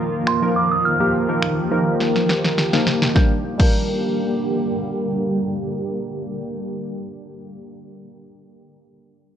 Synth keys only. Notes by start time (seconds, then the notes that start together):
0.42 F3 A#3 D#4 A#4
1.00 F3 A#3 D#4 G4
1.29 F3 A#3 D#4 A#4
1.71 F3 A#3 D#4 A#4
2.73 F3 A#3 D#4 A#4
3.13 G3 A#3 D4
3.18 A#4
3.58 G3 A#3 D4 A#4